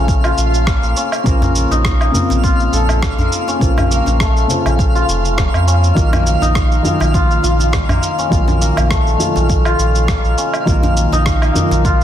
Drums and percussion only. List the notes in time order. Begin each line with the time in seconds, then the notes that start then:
0.08 kick, shaker
0.24 low woodblock, shaker
0.38 shaker
0.54 shaker
0.67 kick, cross-stick, shaker
0.83 shaker
0.97 shaker
1.12 low woodblock, shaker
1.26 kick, shaker
1.42 djembe slap, djembe tone, djembe bass, shaker
1.55 shaker
1.71 djembe slap, djembe tone, shaker
1.85 kick, cross-stick, shaker
2.01 low woodblock, shaker
2.15 djembe tone, djembe bass, shaker
2.30 djembe slap, shaker
2.44 kick, shaker
2.60 shaker
2.73 djembe tone, shaker
2.89 djembe tone, low woodblock, shaker
3.02 kick, cross-stick, shaker
3.19 djembe bass, shaker
3.32 shaker
3.48 djembe slap, shaker
3.61 kick, shaker
3.78 djembe slap, djembe tone, djembe bass, low woodblock, shaker
3.91 shaker
4.06 djembe slap, djembe tone, shaker
4.20 kick, cross-stick, shaker
4.37 shaker
4.50 djembe tone, shaker
4.66 djembe slap, low woodblock, shaker
4.79 kick, shaker
4.96 shaker
5.09 shaker
5.25 shaker
5.38 kick, cross-stick, shaker
5.54 low woodblock, shaker
5.68 shaker
5.84 shaker
5.97 kick, shaker
6.13 djembe slap, djembe tone, djembe bass, low woodblock, shaker
6.27 shaker
6.41 djembe slap, djembe tone, shaker
6.55 kick, cross-stick, shaker
6.72 shaker
6.84 djembe tone, djembe bass, shaker
7.00 djembe slap, low woodblock, shaker
7.14 kick, shaker
7.31 shaker
7.43 djembe tone, shaker
7.59 djembe tone, shaker
7.73 kick, cross-stick, shaker
7.89 djembe bass, low woodblock, shaker
8.03 shaker
8.19 djembe slap, shaker
8.32 kick, shaker
8.47 djembe slap, djembe tone, djembe bass, shaker
8.62 shaker
8.77 djembe slap, djembe tone, low woodblock, shaker
8.91 kick, cross-stick, shaker
9.07 shaker
9.20 djembe tone, shaker
9.36 djembe slap, shaker
9.50 kick, shaker
9.65 low woodblock, shaker
9.79 shaker
9.95 shaker
10.08 kick, cross-stick, shaker
10.25 shaker
10.38 shaker
10.53 low woodblock, shaker
10.67 kick, shaker
10.83 djembe slap, djembe tone, djembe bass, shaker
10.97 shaker
11.12 djembe slap, djembe tone, shaker
11.26 kick, cross-stick, shaker
11.42 low woodblock, shaker
11.55 djembe tone, djembe bass, shaker
11.71 djembe slap, shaker
11.85 kick, shaker